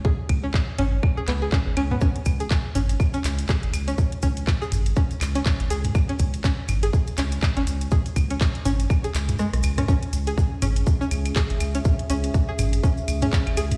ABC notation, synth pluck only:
X:1
M:4/4
L:1/16
Q:"Swing 16ths" 1/4=122
K:C#m
V:1 name="Synth pluck"
G z2 C z2 C z2 G B, G C z C B, | C z2 G z2 C z2 C z2 G z2 C | z2 C z2 G z2 C z2 C z2 G z | z C z2 C z2 G z2 C z2 C z2 |
G z2 C z2 C z2 G z2 G, z2 C | C z2 G z2 C z2 C z2 G z2 C | z2 C z2 G z2 C z2 C z2 G z |]